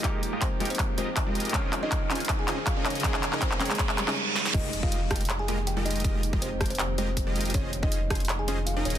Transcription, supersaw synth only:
\new Staff \with { instrumentName = "Supersaw synth" } { \time 4/4 \key f \minor \tempo 4 = 160 <aes g' ees''>8 r16 <aes f' g' bes' ees''>8 r16 <aes f' g' bes' g''>16 r8. <aes f' g' bes' ees''>16 r8 <aes f' g' bes' ees''>8. | des'8 r16 <des' f' aes' c'' ees''>8 r16 <des' f' aes' c'' aes''>16 r8. <des' f' aes' c'' ees''>16 r8 <des' ees' aes' bes' ees''>8. | <des' ees' aes' bes' ees''>8 r16 <des' ees' aes' bes' ees''>8 r16 <des' ees' aes' bes' g''>16 r4 <des' ees' aes' bes' des''>16 r4 | <aes f' g' bes' ees''>8 r16 <aes f' g' bes' ees''>8 r16 <aes f' g' bes' g''>16 r8. <aes f' g' bes' ees''>16 r8 <aes f' g' bes' ees''>8. |
<aes f' g' bes' ees''>8 r16 <aes f' g' bes' ees''>8 r16 <aes f' g' bes' g''>16 r8. <aes f' g' bes' ees''>16 r8 <aes f' g' bes' ees''>8. | <des' f'>8 r16 <des' f' aes' c'' ees''>8 r16 <des' f' aes' c'' aes''>16 r8. <des' f' aes' c'' ees''>16 r8 <des' ees' aes' bes' ees''>8. | }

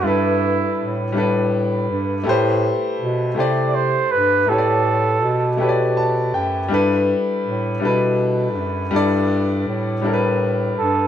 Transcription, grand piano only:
\new Staff \with { instrumentName = "Grand piano" } { \time 6/8 \key g \major \tempo 4. = 54 << { r2. | r2. | r2 a''8 g''8 | r2. |
r2. | } \\ { <g d' e' a' b'>4. <g d' e' a' b'>4. | <a e' g' b' c''>4. <a e' g' c'' d''>4. | <a e' g' b' cis'' d''>4. <a e' g' b' cis'' d''>4. | <g d' e' a' b'>4. <g d' e' a' b'>4. |
<g d' e' a' d''>4. <g d' e' a' bes' b'>4. | } >> }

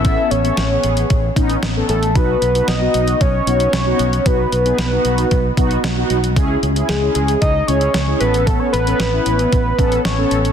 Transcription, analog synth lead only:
\new Staff \with { instrumentName = "Analog synth lead" } { \time 4/4 \key b \mixolydian \tempo 4 = 114 e''8 cis''2 r4 a'8 | b'4 dis''4 cis''2 | b'2.~ b'8 r8 | r4 gis'8 gis'8 dis''8 cis''4 b'8 |
a'16 cis''16 b'2~ b'8 cis''4 | }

